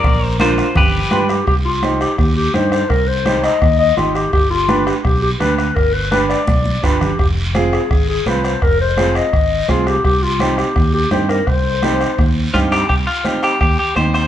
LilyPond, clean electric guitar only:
\new Staff \with { instrumentName = "Clean electric guitar" } { \time 4/4 \key g \phrygian \tempo 4 = 168 <bes' d''>4 <f' c''>4 <g' b'>4. r8 | \key c \minor r1 | r1 | r1 |
r1 | r1 | r1 | r1 |
r2. f'8 g'8 | g'8 f'4 g'8 g'8 g'8 c''8 c''8 | }